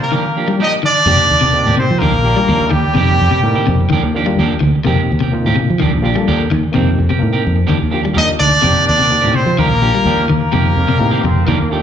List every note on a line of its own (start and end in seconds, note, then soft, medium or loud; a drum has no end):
0.00 0.54 A#3 medium
0.00 0.56 A#4 medium
0.00 muted clean electric guitar stroke soft
0.12 0.24 D#3 medium
0.12 0.24 F3 medium
0.12 0.24 A#3 medium
0.12 0.24 D4 medium
0.12 0.24 G4 medium
0.25 muted clean electric guitar stroke soft
0.35 0.42 D#3 medium
0.35 0.48 F3 medium
0.35 0.42 A#3 medium
0.35 0.49 A#3 medium
0.35 0.43 D4 medium
0.35 0.48 D4 medium
0.35 0.43 F4 medium
0.35 0.48 G4 medium
0.35 0.43 G4 medium
0.48 0.79 D#3 medium
0.48 0.60 G3 medium
0.48 0.79 A#3 medium
0.48 0.80 D4 medium
0.48 0.80 F4 medium
0.48 0.80 G4 medium
0.48 muted clean electric guitar stroke soft
0.60 0.74 F3 medium
0.60 0.74 A#3 medium
0.60 0.74 D4 medium
0.60 0.71 D#4 loud
0.60 0.74 G4 loud
0.60 0.73 D#5 loud
0.83 0.95 D#3 medium
0.83 1.75 D4 loud
0.83 1.75 D5 loud
0.83 muted clean electric guitar stroke soft
0.97 muted clean electric guitar stroke medium
1.06 1.17 F2 medium
1.06 1.19 C3 medium
1.06 1.21 D#3 medium
1.06 1.32 A#3 medium
1.06 1.22 A#3 medium
1.06 1.32 C4 medium
1.06 1.22 C4 medium
1.06 1.32 D#4 medium
1.06 1.32 G4 medium
1.06 1.22 G4 medium
1.30 1.62 D#2 medium
1.30 muted clean electric guitar stroke soft
1.41 1.53 C3 medium
1.41 1.54 A#3 soft
1.41 1.54 C4 medium
1.41 1.54 G4 medium
1.52 1.91 A#3 loud
1.52 1.92 C4 medium
1.52 1.92 D#4 medium
1.52 1.92 G4 loud
1.52 muted clean electric guitar stroke soft
1.66 1.76 A2 medium
1.66 1.78 D#3 medium
1.66 1.78 A#3 medium
1.66 1.78 C4 medium
1.66 1.78 G4 medium
1.77 1.89 C3 medium
1.77 2.02 C4 medium
1.77 2.00 C5 loud
1.77 muted clean electric guitar stroke soft
1.77 muted fingered electric bass stroke soft
1.90 2.00 F3 loud
1.90 muted clean electric guitar stroke medium
1.98 2.14 D#3 medium
1.98 2.14 F3 medium
1.98 2.70 A#3 medium
1.98 2.14 A#3 medium
1.98 2.72 A#4 loud
2.02 2.13 D#2 loud
2.02 2.14 D4 medium
2.02 2.13 G4 medium
2.13 2.33 A#1 medium
2.13 muted clean electric guitar stroke soft
2.22 2.37 F3 medium
2.22 2.30 A#3 medium
2.22 2.31 D4 medium
2.22 2.38 D4 medium
2.22 2.31 F4 medium
2.22 2.31 G4 medium
2.22 2.37 G4 medium
2.22 muted clean electric guitar stroke medium
2.36 2.49 G3 medium
2.36 2.68 A#3 medium
2.36 2.68 D4 medium
2.36 2.68 F4 medium
2.36 2.69 G4 medium
2.36 muted clean electric guitar stroke medium
2.48 2.69 D#2 loud
2.48 2.63 F3 medium
2.48 2.63 A#3 loud
2.48 2.63 D4 medium
2.69 2.83 D#3 medium
2.69 4.12 G3 medium
2.69 4.13 G4 loud
2.69 muted clean electric guitar stroke soft
2.73 2.83 D#2 medium
2.84 muted clean electric guitar stroke soft
2.93 3.17 F2 loud
2.93 3.07 C3 medium
2.93 3.10 D#3 medium
2.93 3.20 A#3 medium
2.93 3.10 A#3 medium
2.93 3.20 C4 medium
2.93 3.11 C4 medium
2.93 3.20 D#4 medium
2.93 3.21 G4 medium
2.97 3.11 G4 loud
3.20 3.31 F2 medium
3.20 muted clean electric guitar stroke soft
3.31 3.43 C3 medium
3.31 3.43 A#3 soft
3.31 3.43 C4 medium
3.31 3.43 G4 medium
3.31 muted fingered electric bass stroke soft
3.42 3.54 A2 loud
3.42 3.81 A#3 loud
3.42 3.81 C4 medium
3.42 3.81 D#4 medium
3.42 3.82 A#4 loud
3.42 muted clean electric guitar stroke soft
3.55 3.66 D#3 medium
3.55 3.67 A#3 medium
3.55 3.67 C4 medium
3.55 3.67 G4 medium
3.55 muted fingered electric bass stroke soft
3.67 3.88 F2 loud
3.67 3.79 C3 medium
3.67 muted clean electric guitar stroke soft
3.80 muted clean electric guitar stroke medium
3.90 4.01 D#2 loud
3.90 4.02 D#3 medium
3.90 4.04 F3 loud
3.90 4.04 A#3 medium
3.90 4.03 D4 medium
3.90 4.03 G4 loud
4.03 4.33 D#2 medium
4.03 muted clean electric guitar stroke medium
4.14 4.27 F3 medium
4.14 4.21 A#3 loud
4.14 4.27 A#3 medium
4.14 4.21 D4 loud
4.14 4.27 D4 medium
4.14 4.22 F4 medium
4.14 4.26 G4 medium
4.14 4.22 G4 loud
4.26 4.38 G3 medium
4.26 4.57 A#3 loud
4.26 4.58 D4 medium
4.26 4.58 F4 medium
4.26 4.58 G4 loud
4.26 muted clean electric guitar stroke medium
4.39 4.49 D#2 loud
4.39 4.53 F3 loud
4.39 4.53 A#3 loud
4.39 4.53 D4 loud
4.39 4.53 G4 loud
4.60 4.72 D2 loud
4.60 4.73 D#3 medium
4.60 muted clean electric guitar stroke soft
4.75 muted clean electric guitar stroke soft
4.84 4.97 F2 loud
4.84 4.97 C3 medium
4.84 5.00 D#3 medium
4.84 5.10 A#3 loud
4.84 5.00 A#3 loud
4.84 5.11 C4 loud
4.84 5.00 C4 loud
4.84 5.11 D#4 medium
4.84 5.11 G4 loud
4.84 5.00 G4 loud
5.11 5.41 D#2 medium
5.11 muted clean electric guitar stroke medium
5.20 5.33 C3 medium
5.20 5.33 A#3 medium
5.20 5.33 C4 medium
5.20 5.33 G4 medium
5.32 5.70 A#3 loud
5.32 5.71 C4 medium
5.32 5.71 D#4 medium
5.32 5.71 F4 loud
5.32 muted clean electric guitar stroke soft
5.46 5.56 A2 medium
5.46 5.57 D#3 medium
5.46 5.57 A#3 medium
5.46 5.57 C4 medium
5.46 5.57 G4 loud
5.55 5.68 C3 medium
5.55 muted clean electric guitar stroke soft
5.55 muted fingered electric bass stroke soft
5.70 5.79 F3 loud
5.70 muted clean electric guitar stroke medium
5.80 5.94 D#2 loud
5.80 5.92 D#3 medium
5.80 5.92 F3 medium
5.80 5.92 A#3 loud
5.80 5.92 D4 loud
5.80 5.92 G4 medium
5.93 6.14 A#1 medium
5.93 muted clean electric guitar stroke medium
6.02 6.16 F3 medium
6.02 6.09 A#3 loud
6.02 6.16 A#3 medium
6.02 6.10 D4 medium
6.02 6.16 D4 medium
6.02 6.10 F4 medium
6.02 6.10 G4 loud
6.02 6.16 G4 medium
6.15 6.28 G3 medium
6.15 6.47 A#3 medium
6.15 6.47 D4 medium
6.15 6.47 F4 medium
6.15 6.47 A4 loud
6.15 muted clean electric guitar stroke medium
6.27 6.48 D#2 loud
6.27 6.42 F3 medium
6.27 6.42 A#3 loud
6.27 6.42 D4 loud
6.27 6.42 G4 loud
6.51 6.62 D#2 medium
6.51 6.63 D#3 medium
6.51 muted clean electric guitar stroke soft
6.63 muted clean electric guitar stroke soft
6.72 6.86 C3 medium
6.72 6.89 D#3 medium
6.72 6.98 A#3 loud
6.72 6.89 A#3 loud
6.72 6.99 C4 medium
6.72 6.89 C4 loud
6.72 6.99 D#4 loud
6.72 7.00 G4 loud
6.72 muted clean electric guitar stroke loud
6.77 6.96 F2 loud
6.98 7.10 F2 medium
6.98 muted clean electric guitar stroke soft
7.09 7.22 C3 medium
7.09 7.20 A#3 soft
7.09 7.20 C4 medium
7.09 7.21 G4 medium
7.09 muted fingered electric bass stroke soft
7.19 7.33 A2 medium
7.19 7.58 A#3 loud
7.19 7.59 C4 medium
7.19 7.60 D#4 medium
7.19 7.60 A#4 loud
7.19 muted clean electric guitar stroke soft
7.33 7.43 A#3 medium
7.33 7.43 C4 medium
7.33 7.44 G4 medium
7.33 muted fingered electric bass stroke soft
7.44 7.66 F2 loud
7.44 muted clean electric guitar stroke soft
7.56 muted clean electric guitar stroke soft
7.67 7.80 D#2 loud
7.67 7.81 D#3 medium
7.67 7.80 F3 medium
7.67 7.79 A#3 loud
7.67 7.79 D4 loud
7.67 7.79 G4 loud
7.80 8.12 D#2 medium
7.80 muted clean electric guitar stroke soft
7.90 8.04 F3 medium
7.90 8.03 A#3 medium
7.90 7.99 A#3 medium
7.90 8.02 D4 medium
7.90 7.99 D4 medium
7.90 8.00 F4 medium
7.90 8.02 G4 medium
7.90 8.00 G4 loud
8.03 8.17 G3 medium
8.03 8.36 A#3 medium
8.03 8.36 D4 medium
8.03 8.37 F4 medium
8.03 8.37 G4 medium
8.03 muted clean electric guitar stroke soft
8.13 8.27 D#2 loud
8.13 8.29 F3 medium
8.13 8.30 A#3 medium
8.13 8.30 D4 medium
8.13 8.27 D#4 medium
8.13 8.30 G4 medium
8.18 8.28 D#5 loud
8.38 8.51 D2 medium
8.38 8.52 D#3 medium
8.38 8.84 D4 loud
8.38 8.84 D5 loud
8.38 muted clean electric guitar stroke soft
8.51 muted clean electric guitar stroke soft
8.61 8.74 F2 loud
8.61 8.75 C3 medium
8.61 8.77 D#3 medium
8.61 8.88 A#3 medium
8.61 8.78 A#3 medium
8.61 8.88 C4 medium
8.61 8.78 C4 medium
8.61 8.88 D#4 medium
8.61 8.78 G4 medium
8.61 8.89 G4 medium
8.85 9.19 D#2 medium
8.85 9.36 D4 loud
8.85 9.37 D5 loud
8.85 muted clean electric guitar stroke soft
8.97 9.11 C3 medium
8.97 9.09 A#3 soft
8.97 9.09 C4 medium
8.97 9.09 G4 medium
9.10 9.49 A#3 medium
9.10 9.49 C4 medium
9.10 9.49 D#4 medium
9.10 9.50 G4 medium
9.10 muted clean electric guitar stroke soft
9.21 9.34 A2 medium
9.21 9.33 D#3 medium
9.21 9.33 A#3 medium
9.21 9.34 C4 medium
9.21 9.33 G4 medium
9.34 9.46 C3 medium
9.34 9.58 C4 medium
9.34 9.59 C5 loud
9.34 muted clean electric guitar stroke soft
9.34 muted fingered electric bass stroke soft
9.46 9.56 F3 medium
9.46 muted clean electric guitar stroke soft
9.58 9.70 D#2 loud
9.58 9.70 D#3 medium
9.58 9.70 F3 medium
9.58 10.25 A#3 medium
9.58 9.70 A#3 medium
9.58 9.69 D4 medium
9.58 9.69 G4 medium
9.58 10.26 A#4 loud
9.70 9.91 A#1 loud
9.70 muted clean electric guitar stroke soft
9.81 9.94 F3 medium
9.81 9.88 A#3 medium
9.81 9.94 A#3 medium
9.81 9.94 D4 medium
9.81 9.89 D4 medium
9.81 9.89 F4 medium
9.81 9.93 G4 medium
9.81 9.89 G4 medium
9.95 10.07 G3 medium
9.95 10.26 A#3 medium
9.95 10.26 D4 medium
9.95 10.27 F4 medium
9.95 10.27 G4 medium
10.05 10.26 D#2 loud
10.05 10.21 F3 medium
10.05 10.21 A#3 medium
10.05 10.21 D4 medium
10.05 10.21 G4 medium
10.29 10.40 D#2 medium
10.29 10.41 D#3 medium
10.29 11.68 A#3 medium
10.29 11.68 A#4 loud
10.29 muted clean electric guitar stroke soft
10.41 muted clean electric guitar stroke soft
10.51 10.74 F2 loud
10.51 10.65 C3 medium
10.51 10.67 D#3 medium
10.51 10.67 A#3 medium
10.51 10.78 A#3 medium
10.51 10.67 C4 medium
10.51 10.78 C4 medium
10.51 10.79 D#4 medium
10.51 10.67 G4 loud
10.51 10.79 G4 medium
10.76 10.88 F2 medium
10.76 10.99 G3 medium
10.76 muted clean electric guitar stroke soft
10.88 11.01 C3 medium
10.88 10.98 A#3 medium
10.88 10.98 C4 medium
10.88 10.98 G4 medium
10.88 muted fingered electric bass stroke soft
10.99 11.11 A2 loud
10.99 11.38 A#3 loud
10.99 11.24 A#3 loud
10.99 11.38 C4 medium
10.99 11.39 D#4 loud
10.99 11.39 G4 loud
10.99 muted clean electric guitar stroke soft
11.11 11.22 D#3 medium
11.11 11.22 A#3 medium
11.11 11.22 C4 medium
11.11 11.22 G4 medium
11.11 muted fingered electric bass stroke soft
11.23 11.44 F2 loud
11.23 11.37 C3 medium
11.23 11.47 C4 loud
11.23 muted clean electric guitar stroke medium
11.36 muted clean electric guitar stroke soft
11.47 11.59 D#2 loud
11.47 11.60 D#3 loud
11.47 11.60 F3 loud
11.47 11.71 A#3 loud
11.47 11.59 A#3 loud
11.47 11.59 D4 loud
11.47 11.58 G4 loud
11.60 11.82 D#2 medium
11.60 muted clean electric guitar stroke soft
11.70 11.82 F3 medium
11.70 11.82 A3 medium
11.70 11.77 A#3 loud
11.70 11.82 A#3 medium
11.70 11.78 D4 medium
11.70 11.82 D4 medium
11.70 11.78 F4 medium
11.70 11.82 G4 medium
11.70 11.79 G4 loud